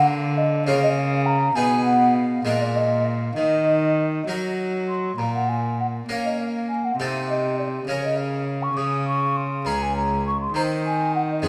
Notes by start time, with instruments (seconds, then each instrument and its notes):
Already playing: harpsichord D3 A#3 F4 A#4, cello D3
0.07 flute F5
0.37 flute D#5
0.67 harpsichord C#3 A#3 F4 A#4, cello C#3, flute C#5
0.83 flute D#5
0.97 flute F5
1.26 flute A#5
1.55 harpsichord B2 B3 D#4 G#4, cello B2, flute G#5
1.84 flute F#5
2.15 flute F5
2.45 harpsichord A#2 G#3 D4 A#4, cello A#2, flute D#5
2.61 flute D5
2.75 flute D#5
3.05 flute F5
3.36 harpsichord D#3, cello D#3, flute D#5
4.28 harpsichord F#3 D#4 A#4, cello F#3
4.88 flute C6
5.18 harpsichord A#2, cello A#2, flute A#5
5.34 flute F#5
5.49 flute G#5
5.80 flute F#5
6.09 harpsichord A#3 C#4 A#4, cello A#3, flute F5
6.24 flute D#5
6.40 flute F5
6.69 flute G#5
6.84 flute F#5
6.99 cello C3, harpsichord C3 A3 D#4 A4, flute F5
7.29 flute D#5
7.59 flute D5
7.87 harpsichord C#3 C#4 A#4, cello C#3, flute C#5
8.04 flute D#5
8.17 flute F5
8.47 flute F5
8.62 flute C#6
8.76 cello C#3, harpsichord C#3, flute D#6
9.07 flute C#6
9.36 flute C6
9.65 harpsichord C#2 C#4 G#4, cello C#2, flute A#5
9.82 flute G#5
9.96 flute A#5
10.26 flute C#6
10.40 flute C6
10.54 cello D#3, harpsichord D#3 C4 C5, flute A#5
10.86 flute G#5
11.15 flute F#5
11.31 flute D#5
11.42 harpsichord F2 G#3 C#4 G#4, cello F2, flute F5